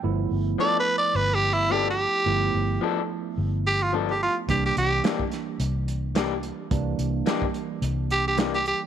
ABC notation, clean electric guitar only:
X:1
M:4/4
L:1/8
Q:"Swing 16ths" 1/4=108
K:Gmix
V:1 name="Clean electric guitar"
z2 [F,B,DA] z3 [F,B,DA] z | z2 [F,B,DA] z3 [F,B,DA] z | z2 [E,_B,DG] z3 [E,B,DG] z | z2 [E,_B,DG] z3 [E,B,DG] z |]